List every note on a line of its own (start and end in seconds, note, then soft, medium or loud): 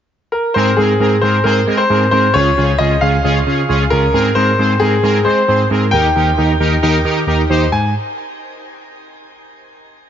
0.32 0.53 A#4 medium
0.54 0.71 G#2 loud
0.54 0.70 C4 loud
0.54 0.70 G#4 medium
0.54 0.70 A#4 loud
0.54 0.78 C5 medium
0.77 0.94 G#2 loud
0.77 0.93 C4 medium
0.77 1.23 G#4 medium
0.77 0.93 G#4 medium
0.77 0.93 A#4 medium
1.00 1.16 G#2 loud
1.00 1.15 C4 medium
1.00 1.15 G#4 medium
1.00 1.15 A#4 medium
1.21 1.39 G#2 medium
1.21 1.37 C4 medium
1.21 1.38 G#4 medium
1.21 1.37 A#4 medium
1.21 1.45 C5 medium
1.44 1.61 G#2 loud
1.44 1.60 C4 medium
1.44 1.60 G#4 medium
1.44 1.79 A#4 medium
1.44 1.60 C5 loud
1.68 1.83 G#3 loud
1.68 1.82 C4 medium
1.68 1.82 G#4 medium
1.68 1.82 A#4 medium
1.77 2.10 C5 medium
1.90 2.06 G#2 loud
1.90 2.05 C4 medium
1.90 2.05 G#4 medium
1.90 2.05 A#4 medium
2.11 2.28 G#2 medium
2.11 2.27 C4 medium
2.11 2.27 G#4 medium
2.11 2.27 A#4 medium
2.11 2.35 C5 medium
2.34 2.50 C#2 loud
2.34 2.49 C#4 medium
2.34 2.49 F4 medium
2.34 2.49 G#4 loud
2.34 2.80 C#5 loud
2.57 2.73 C#2 medium
2.57 2.72 C#4 medium
2.57 2.72 F4 medium
2.57 2.72 G#4 medium
2.78 2.95 C#2 loud
2.78 2.94 C#4 medium
2.78 2.94 F4 medium
2.78 2.94 G#4 medium
2.78 3.02 D#5 medium
3.01 3.18 C#2 medium
3.01 3.17 C#4 medium
3.01 3.17 F4 medium
3.01 3.17 G#4 medium
3.01 3.94 F5 loud
3.24 3.40 C#2 loud
3.24 3.39 C#4 medium
3.24 3.39 F4 medium
3.24 3.39 G#4 loud
3.47 3.63 C#3 medium
3.47 3.61 C#4 medium
3.47 3.61 F4 medium
3.47 3.61 G#4 medium
3.69 3.85 C#2 loud
3.69 3.84 C#4 medium
3.69 3.84 F4 medium
3.69 3.84 G#4 loud
3.90 4.07 C#2 medium
3.90 4.06 C#4 medium
3.90 4.06 F4 medium
3.90 4.06 G#4 medium
3.90 4.37 A#4 loud
4.14 4.30 G#2 medium
4.14 4.28 C4 loud
4.14 4.28 G#4 medium
4.14 4.28 A#4 loud
4.35 4.52 G#2 loud
4.35 4.51 C4 medium
4.35 4.51 G#4 medium
4.35 4.51 A#4 medium
4.35 4.82 C5 medium
4.59 4.74 G#2 loud
4.59 4.73 C4 medium
4.59 4.73 G#4 medium
4.59 4.73 C5 medium
4.80 4.97 G#2 medium
4.80 4.96 C4 medium
4.80 5.26 G#4 loud
4.80 4.96 G#4 medium
4.80 4.96 A#4 medium
5.03 5.19 G#2 loud
5.03 5.18 C4 medium
5.03 5.18 G#4 medium
5.03 5.18 A#4 loud
5.25 5.41 G#3 loud
5.25 5.40 C4 medium
5.25 5.40 G#4 medium
5.25 5.67 C5 medium
5.25 5.40 C5 medium
5.48 5.64 G#2 medium
5.48 5.63 C4 medium
5.48 5.63 G#4 medium
5.48 5.63 C5 medium
5.70 5.93 G#2 loud
5.70 5.85 C4 medium
5.70 5.85 G#4 medium
5.70 5.85 A#4 medium
5.91 6.09 D#2 loud
5.91 6.08 D#4 loud
5.91 6.08 G4 medium
5.91 6.08 A#4 loud
5.91 7.22 G5 loud
6.15 6.31 D#2 medium
6.15 6.30 D#4 medium
6.15 6.30 G4 medium
6.15 6.30 A#4 medium
6.38 6.53 D#2 loud
6.38 6.52 D#4 medium
6.38 6.52 G4 medium
6.38 6.52 A#4 medium
6.60 6.76 D#2 medium
6.60 6.75 D#4 medium
6.60 6.75 G4 medium
6.60 6.75 A#4 loud
6.82 6.98 D#2 loud
6.82 6.97 D#4 loud
6.82 6.97 G4 loud
6.82 6.97 A#4 loud
7.05 7.21 D#3 loud
7.05 7.20 D#4 medium
7.05 7.20 G4 medium
7.05 7.20 A#4 loud
7.27 7.43 D#2 medium
7.27 7.42 D#4 medium
7.27 7.42 G4 medium
7.27 7.42 A#4 medium
7.50 7.65 D#2 medium
7.50 7.64 D#4 medium
7.50 7.64 G4 medium
7.50 7.64 C5 loud
7.72 7.93 G#2 medium
7.72 7.93 G#5 medium